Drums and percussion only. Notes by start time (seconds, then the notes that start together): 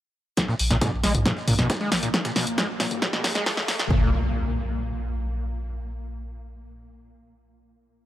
0.37 kick, snare, closed hi-hat
0.48 snare
0.59 closed hi-hat, open hi-hat
0.71 snare, closed hi-hat
0.81 kick, snare, closed hi-hat, mid tom
1.04 snare, closed hi-hat, open hi-hat
1.15 closed hi-hat, mid tom
1.26 kick, snare, closed hi-hat
1.37 snare
1.48 closed hi-hat, mid tom, open hi-hat
1.59 snare, closed hi-hat
1.70 kick, snare, closed hi-hat
1.81 snare
1.92 snare, closed hi-hat, open hi-hat
2.03 closed hi-hat
2.14 kick, snare, closed hi-hat
2.25 snare, closed hi-hat
2.36 snare, open hi-hat
2.47 closed hi-hat
2.58 kick, snare, closed hi-hat, mid tom
2.80 snare, closed hi-hat, open hi-hat
2.91 closed hi-hat, mid tom
3.02 kick, snare, closed hi-hat
3.13 snare
3.24 snare, closed hi-hat, mid tom, open hi-hat
3.35 snare, closed hi-hat
3.46 kick, snare, closed hi-hat, open hi-hat
3.57 snare
3.68 snare, closed hi-hat, open hi-hat
3.79 snare, closed hi-hat
3.90 kick